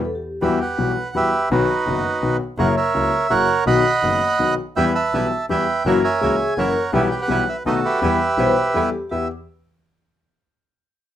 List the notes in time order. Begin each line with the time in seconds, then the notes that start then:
0.05 A4
0.15 G4
0.42 E2 E3 G3 B3 F#4 G4 B4 E5
0.61 B4 F#5
0.78 B1 B2 E3 G3 B3 F#4
1.14 E2 E3 G3 B3 F#4 G4 B4 E5
1.50 B1 B2 D#3 F#3 B3 D#4 F#4 B4
1.86 F#1 F#2 D#3 F#3 B3 F#4
2.22 B1 B2 D#3 F#3 B3 F#4
2.58 F#1 F#2 C#3 F#3 A#3 E4 A#4 C#5 F#5
2.77 A#4 C#5 E5
2.94 C#2 C#3 F#3 A#3 E4
3.30 F#1 F#2 C#3 F#3 A#3 E4 A#4 C#5 F#5
3.67 B1 B2 D#3 F#3 B3 F#4 D#5 F#5 B5
4.02 F#1 F#2 D#3 F#3 B3 F#4
4.39 B1 B2 D#3 F#3 B3 F#4
4.76 E2 E3 G3 B3 E4 G4 B4 E5 G5
4.95 E5 A5
5.13 B1 B2 E3 G3 B3 E4 G4
5.49 E2 E3 G3 B3 E4 G4 B4 E5 G5
5.85 F#1 F#2 E3 F#3 A#3 C#4 E4 F#4 A#4 C#5 F#5
6.04 C#5 E5 G#5
6.21 C#2 C#3 E3 F#3 A#3 C#4 E4 F#4 G#4
6.57 F#1 F#2 E3 F#3 A#3 C#4 E4 F#4 A#4 C#5 F#5
6.93 B1 B2 E3 G3 B3 E4 G4 B4 E5
7.11 G5
7.22 B4 F#5
7.28 B1 B2 E3 G3 B3 E4 G4
7.49 E5
7.65 B1 B2 D#3 A3 B3 D#4 F#4 A4 D#5
7.85 G4 B4 E5
8.02 E2 E3 G3 B3 E4 G4
8.37 B1 B2 E3 G3 B3 E4 G4 C5
8.47 B4
8.74 E2 E3 G3 B3 E4 G4 A4
9.09 E2 G3 B3 E4 G4 E5